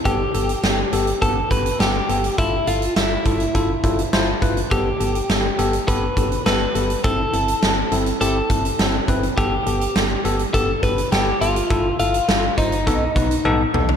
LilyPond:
<<
  \new Staff \with { instrumentName = "Clean electric guitar" } { \time 4/4 \key g \mixolydian \tempo 4 = 103 g'2 a'8 b'8 g'4 | e'8 f'8 e'2~ e'8 r8 | g'2 b'4 b'4 | a'2 a'4. r8 |
g'4. r8 a'8 b'8 g'8 f'8~ | f'8 f'4 ees'2 r8 | }
  \new Staff \with { instrumentName = "Tine electric piano" } { \time 4/4 \key g \mixolydian << { r1 | r2. a''4 | r1 | r1 |
r1 | r1 | } \\ { <b g' a'>8 <b g' a'>8 <b g' a'>8 <b g' a'>8 <b g' a'>8 <b g' a'>8 <b g' a'>8 <b g' a'>8 | <e' f' a'>8 <e' f' a'>8 <e' f' a'>8 <e' f' a'>8 <e' f' a'>8 <e' f' a'>8 <e' f' c''>8 <e' f' b'>8 | <b g' a'>8 <b g' a'>8 <b g' a'>8 <b g' a'>8 <b g' a'>8 <b g' a'>8 <b g' a'>8 <b g' a'>8 | <c' e' a'>8 <c' e' a'>8 <c' e' a'>8 <c' e' a'>8 <c' e' g'>8 <c' e' a'>8 <c' e' a'>8 <c' e' b'>8 |
<b g' a'>8 <b g' a'>8 <b g' a'>8 <b g' a'>8 <b g' a'>8 <b g' a'>8 <b g' a'>8 <b g' a'>8 | <e' f' a'>8 <e' f' a'>8 <e' f' a'>8 <e' f' c''>8 <b dis' a'>8 <b dis' b'>8 <b dis' a'>8 <b dis' a'>8 | } >> }
  \new Staff \with { instrumentName = "FM bass" } { \clef bass \time 4/4 \key g \mixolydian g,,8 g,,8 g,,8 g,,8 g,,8 g,,8 g,,8 g,,8 | g,,8 g,,8 g,,8 g,,8 g,,8 g,,8 g,,8 g,,8 | g,,8 g,,8 g,,8 g,,8 g,,8 g,,8 g,,8 g,,8 | g,,8 g,,8 g,,8 g,,8 g,,8 g,,8 g,,8 g,,8 |
g,,8 g,,8 g,,8 g,,8 g,,8 g,,8 g,,8 g,,8 | g,,8 g,,8 g,,8 g,,8 b,,8 b,,8 b,,8 b,,8 | }
  \new DrumStaff \with { instrumentName = "Drums" } \drummode { \time 4/4 <hh bd>8 hh16 hh16 <hh sn>8 hh16 hh16 <hh bd>8 <hh bd>16 hh16 <hh sn>8 hh16 hh16 | <hh bd>8 hh16 hh16 <hh sn>8 <hh bd>16 hh16 <hh bd>8 <hh bd>16 hh16 <hh sn>8 <hh bd>16 hh16 | <hh bd>8 hh16 hh16 <hh sn>8 hh16 hh16 <hh bd>8 <hh bd>16 hh16 <hh sn>8 hh16 hh16 | <hh bd>8 hh16 hh16 <hh sn>8 hh16 hh16 hh8 <hh bd>16 hh16 <hh sn>8 <hh bd>16 hh16 |
<hh bd>8 hh16 hh16 <hh sn>8 hh16 hh16 <hh bd>8 <hh bd>16 hh16 <hh sn>8 hh16 hh16 | <hh bd>8 hh16 hh16 <hh sn>8 <hh bd>16 hh16 <hh bd>8 <hh bd>16 hh16 tommh8 toml16 tomfh16 | }
>>